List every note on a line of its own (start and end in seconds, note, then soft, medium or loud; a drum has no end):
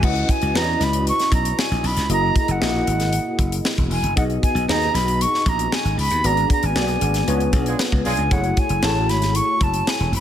0.03 0.23 C#2 loud
0.03 0.46 C#4 medium
0.03 0.46 E4 medium
0.03 0.46 F#4 medium
0.03 0.46 B4 medium
0.03 0.46 D#5 medium
0.03 0.32 F#5 medium
0.03 kick loud
0.03 crash medium
0.15 closed hi-hat soft
0.29 0.58 G#5 loud
0.29 kick loud
0.29 closed hi-hat medium
0.42 0.52 C#2 medium
0.42 closed hi-hat medium
0.55 0.75 E2 loud
0.55 1.41 C#4 medium
0.55 1.41 E4 medium
0.55 1.41 F#4 medium
0.55 1.41 B4 medium
0.55 0.62 D5 medium
0.55 0.85 A#5 loud
0.55 snare loud
0.62 1.44 D#5 medium
0.80 1.10 C#2 medium
0.80 1.08 B5 medium
0.80 snare soft
0.80 closed hi-hat medium
0.93 closed hi-hat medium
1.07 1.32 C#6 loud
1.07 closed hi-hat medium
1.19 snare soft
1.19 closed hi-hat soft
1.31 1.52 B1 medium
1.31 1.61 A#5 medium
1.31 kick loud
1.31 closed hi-hat medium
1.45 closed hi-hat medium
1.59 1.88 G#5 medium
1.59 snare loud
1.71 1.81 A#1 medium
1.71 closed hi-hat soft
1.83 1.94 B1 medium
1.83 2.11 B5 loud
1.83 open hi-hat medium
1.97 2.07 C#2 medium
1.97 snare soft
1.97 closed hi-hat medium
2.09 2.29 F#1 loud
2.09 2.53 A#3 medium
2.09 2.53 E4 medium
2.09 2.53 F#4 medium
2.09 2.53 G#4 medium
2.09 2.53 D#5 medium
2.09 2.35 A#5 loud
2.09 closed hi-hat medium
2.36 2.53 A#5 loud
2.36 kick loud
2.36 closed hi-hat medium
2.48 2.58 F#1 loud
2.48 3.54 F#5 medium
2.48 closed hi-hat soft
2.60 2.81 A#1 medium
2.60 3.47 A#3 medium
2.60 3.47 E4 medium
2.60 3.47 F#4 medium
2.60 3.48 G#4 medium
2.60 3.48 D#5 medium
2.60 snare loud
2.87 3.17 G#1 loud
2.87 closed hi-hat medium
3.00 snare soft
3.00 closed hi-hat medium
3.13 closed hi-hat medium
3.39 3.59 F#1 loud
3.39 kick loud
3.39 closed hi-hat medium
3.52 closed hi-hat medium
3.65 snare loud
3.78 3.88 E1 loud
3.78 kick medium
3.78 closed hi-hat soft
3.90 4.00 E1 medium
3.90 4.16 G#5 medium
3.90 open hi-hat medium
4.02 4.13 F#1 medium
4.02 closed hi-hat medium
4.16 4.37 B1 loud
4.16 4.59 B3 medium
4.16 4.60 D#4 medium
4.16 4.60 F#4 medium
4.16 4.60 G#4 medium
4.16 4.60 D#5 medium
4.16 4.23 F#5 loud
4.16 kick loud
4.16 closed hi-hat medium
4.30 closed hi-hat soft
4.43 4.67 G#5 loud
4.43 kick loud
4.43 closed hi-hat medium
4.55 4.65 B1 loud
4.55 closed hi-hat medium
4.68 4.88 D#2 loud
4.68 5.55 B3 medium
4.68 5.55 D#4 medium
4.68 5.55 F#4 medium
4.68 5.55 G#4 medium
4.68 5.55 D#5 medium
4.68 4.96 A#5 loud
4.68 snare loud
4.82 closed hi-hat soft
4.94 5.24 B1 loud
4.94 5.23 B5 loud
4.94 snare soft
4.94 closed hi-hat medium
5.08 closed hi-hat medium
5.21 5.50 C#6 loud
5.21 closed hi-hat medium
5.34 snare soft
5.46 5.66 A#1 medium
5.46 5.76 A#5 loud
5.46 kick loud
5.46 closed hi-hat medium
5.59 closed hi-hat medium
5.72 5.99 G#5 medium
5.72 snare loud
5.85 5.95 G#1 medium
5.85 closed hi-hat soft
5.97 6.08 C#2 medium
5.97 6.28 B5 loud
5.97 open hi-hat medium
6.11 6.21 D#2 medium
6.11 closed hi-hat medium
6.24 6.44 G#1 loud
6.24 6.67 B3 medium
6.24 6.67 D4 medium
6.24 6.67 F#4 medium
6.24 6.68 G#4 medium
6.24 6.68 D5 medium
6.24 6.51 A#5 loud
6.24 closed hi-hat medium
6.37 closed hi-hat soft
6.50 6.67 A#5 loud
6.50 kick loud
6.50 closed hi-hat medium
6.63 6.73 G#1 loud
6.63 7.68 G#5 medium
6.63 closed hi-hat medium
6.75 6.96 B1 loud
6.75 6.82 A#3 medium
6.75 7.27 D4 medium
6.75 7.28 F#4 medium
6.75 7.27 G#4 medium
6.75 7.28 D5 medium
6.75 snare loud
6.82 7.27 B3 medium
6.88 closed hi-hat soft
7.01 7.22 G#1 loud
7.01 closed hi-hat medium
7.14 snare soft
7.14 closed hi-hat medium
7.27 7.48 C#2 loud
7.27 8.14 B3 medium
7.27 8.14 D4 medium
7.27 8.14 F4 medium
7.27 8.14 G#4 medium
7.27 8.14 C#5 loud
7.27 closed hi-hat medium
7.40 closed hi-hat soft
7.53 7.73 B1 medium
7.53 kick loud
7.53 closed hi-hat medium
7.66 7.78 G#3 medium
7.66 7.78 D4 medium
7.66 7.78 F4 medium
7.66 7.78 G#4 medium
7.66 closed hi-hat medium
7.79 snare loud
7.92 8.02 C#2 medium
7.92 kick medium
8.05 8.16 B1 medium
8.05 8.22 G#3 medium
8.05 8.22 D4 medium
8.05 8.22 F4 medium
8.05 8.22 G#4 loud
8.05 8.34 G#5 medium
8.05 open hi-hat medium
8.17 8.29 C#2 medium
8.17 closed hi-hat medium
8.31 8.51 F#1 loud
8.31 8.74 A3 medium
8.31 8.75 E4 medium
8.31 8.75 F#4 medium
8.31 8.75 G#4 medium
8.31 8.75 C#5 medium
8.31 8.60 F#5 medium
8.31 kick loud
8.31 closed hi-hat medium
8.44 closed hi-hat soft
8.57 8.85 G#5 loud
8.57 kick loud
8.57 closed hi-hat medium
8.69 8.80 F#1 loud
8.69 closed hi-hat medium
8.83 9.09 A1 medium
8.83 9.69 A3 medium
8.83 9.69 E4 medium
8.83 9.70 F#4 medium
8.83 9.70 G#4 medium
8.83 9.70 C#5 medium
8.83 9.11 A5 loud
8.83 snare loud
9.09 9.39 G#1 medium
9.09 9.37 B5 loud
9.09 snare soft
9.09 closed hi-hat medium
9.22 snare soft
9.22 closed hi-hat medium
9.35 9.64 C#6 loud
9.35 closed hi-hat medium
9.61 9.81 F#1 loud
9.61 9.91 A5 loud
9.61 kick loud
9.61 closed hi-hat medium
9.74 closed hi-hat medium
9.87 10.14 G#5 medium
9.87 snare loud
10.00 10.10 E1 loud
10.00 closed hi-hat soft
10.12 10.20 E1 loud
10.12 open hi-hat medium
10.16 10.20 B5 loud